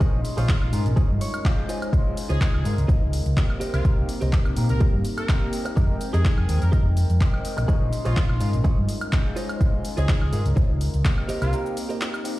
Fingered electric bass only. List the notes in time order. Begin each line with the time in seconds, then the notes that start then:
0.14 A#1
0.38 A#1
0.62 A#1
0.73 G#2
0.86 A#1
1.10 G2
1.93 C#2
2.30 C#2
2.54 C#2
2.65 G#2
2.78 C#2
3.26 C#2
3.61 muted fingered electric bass stroke
3.74 C2
3.98 C2
4.22 C2
4.46 C2
4.57 A#2
4.70 C2
4.94 G2
5.77 F2
6.14 F2
6.38 F2
6.49 D#2
6.62 F2
7.10 F2
7.45 muted fingered electric bass stroke
7.58 A#1
7.82 A#1
8.06 A#1
8.30 A#1
8.41 G#2
8.54 A#1
8.78 G2
9.61 C#2
9.98 C#2
10.22 C#2
10.33 G#2
10.46 C#2
10.57 C#2
10.94 C#2
11.29 muted fingered electric bass stroke
11.42 C2